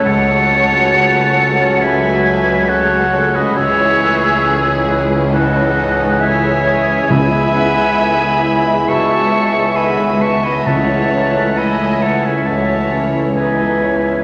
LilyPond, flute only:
\new Staff \with { instrumentName = "Flute" } { \time 4/4 \key cis \minor \tempo 4 = 68 fis''2 e''4 cis''8. b'16 | cis''4.~ cis''16 r16 dis''4 e''4 | gis''2 a''4 gis''8 a''16 gis''16 | e''4 gis''8 fis''16 e''16 e''8. r16 e''4 | }